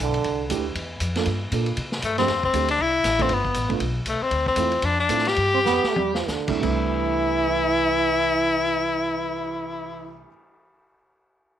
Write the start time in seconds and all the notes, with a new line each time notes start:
0.00 B1 D3
0.14 ride
0.24 C2, ride
0.49 D2 A3 D4 E4 G4, hi-hat pedal, ride
0.75 E2, ride
1.00 F2, hi-hat pedal, ride
1.15 A#3 D4 F4 A4, snare, ride
1.25 G2, ride
1.52 A#2 A#3 D4 F4 A4, hi-hat pedal, ride
1.66 ride
1.77 C3, ride
1.92 snare
2.02 G2 A3, hi-hat pedal, ride
2.18 F2 A3 C4 D4 G4, snare, ride
2.28 F2, snare, ride
2.43 C4, kick
2.53 D2 A3 C4 D4 G4, hi-hat pedal, ride
2.68 D4, ride
2.79 C2 E4
3.04 A1, snare, hi-hat pedal, ride
3.19 A3 B3 C4 D4 F4, kick, ride
3.29 G1, ride
3.34 B3
3.45 kick
3.54 A1, hi-hat pedal, ride
3.69 A3 B3 D4 F4, kick, ride
3.80 B1, ride
4.05 C2 A3, hi-hat pedal, ride
4.21 C4, muted upright bass stroke
4.31 D2, ride
4.46 C4, kick
4.56 E2 A3 C4 E4 F4, hi-hat pedal, ride
4.71 ride
4.82 F2 D4, ride
5.00 D4
5.09 A2 A3 C4 E4 F4, hi-hat pedal, ride
5.18 snare
5.25 G4, snare, ride
5.36 G2, ride
5.54 C4
5.65 F2 B3, snare, hi-hat pedal
5.84 muted upright bass stroke, snare
5.89 A3
5.96 E2 G3, high tom
6.15 F3, snare
6.28 D2 D3, snare, hi-hat pedal
6.48 C3 G3 A3 D4 E4, kick, crash
6.60 C2 C3 E3 G3 A3 D4 E4, kick, crash
6.84 cymbal swell